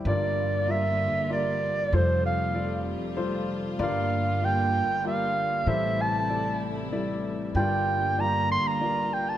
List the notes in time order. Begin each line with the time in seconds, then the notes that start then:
0.05 G1 G2 D3 G3 A#3 F4 A#4 D5
0.68 G3 F4 A#4 D5 E5
1.30 G3 F4 A#4 D5
1.92 F1 F2 C3 G3 A3 F4 A4 C5
2.26 F5
2.54 G3 F4 A4 D5
3.17 G3 F4 A4 C5
3.79 G1 G2 D3 G3 A#3 F4 A#4 D5 F5
4.42 G3 F4 A#4 D5 G5
5.04 G3 F4 A#4 D5 F5
5.65 A1 A2 C3 G3 A3 E4 A4 C5 E5
6.01 A5
6.29 G3 E4 A4 D5
6.92 G3 E4 A4 D5
7.55 G1 G2 D3 G3 A#3 F4 A#4 D5 G5
8.18 G3 F4 A#4 D5 A#5
8.52 C6
8.67 A#5
8.81 G3 F4 A#4 D5
9.13 G5
9.29 A5